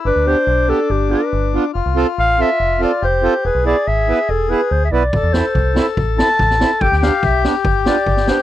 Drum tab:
SD |----------------|----------------|----------------|--o---o---ooooo-|
BD |----------------|----------------|----------------|o---o---o---o---|

SD |-oo-o-o---o--oo-|
BD |o---o---o---o---|